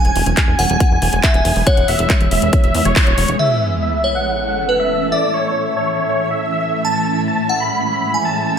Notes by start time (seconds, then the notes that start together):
Already playing: E3 G#3 B3 G#5
0.05 E1, closed hi-hat
0.16 E1, open hi-hat
0.26 E1, closed hi-hat
0.37 G#5, kick, clap, closed hi-hat
0.48 E1
0.59 E1 F#5, open hi-hat
0.70 E1 G#5, closed hi-hat
0.80 kick, closed hi-hat
0.91 E1
1.02 E1 G#5, open hi-hat
1.13 E1, closed hi-hat
1.23 E5, kick, clap, closed hi-hat
1.34 E1 G#5, closed hi-hat
1.45 E1, open hi-hat
1.56 E1, open hi-hat
1.67 C#5 F#5, kick, closed hi-hat
1.77 E1, closed hi-hat
1.88 E1 E5, open hi-hat
1.99 E1, closed hi-hat
2.10 kick, clap, closed hi-hat
2.21 E1, closed hi-hat
2.31 E1 E5, open hi-hat
2.42 E1, closed hi-hat
2.53 kick, closed hi-hat
2.64 E1 E5, closed hi-hat
2.75 E2, open hi-hat
2.85 E1 C#5, closed hi-hat
2.96 kick, clap, open hi-hat
3.07 E1 C#5, closed hi-hat
3.18 E1, open hi-hat
3.28 E1, closed hi-hat
3.39 A2 E3 C#4 A4 E5, crash, sub drop
3.83 E5
4.04 C#5
4.15 F#5
4.47 F#5
4.69 B4
4.80 E5
5.12 D5 E5
5.34 C#5
5.77 C#5
6.09 C#5
6.31 E5
6.52 E5
6.85 G#3 A5
7.28 A5
7.49 F#5
7.60 B5
7.93 B5
8.14 G#5
8.25 A5